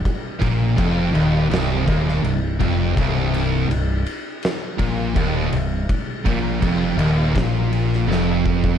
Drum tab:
RD |x-x-x-x-x-x-x-x-|x-x-x-x-x-x-x-x-|x-x-x-x-x-x-----|
SD |--------o--o----|--------o-------|--------o--oo---|
BD |o-o-o-----o---o-|o---------o-o---|o-o-o---o-----oo|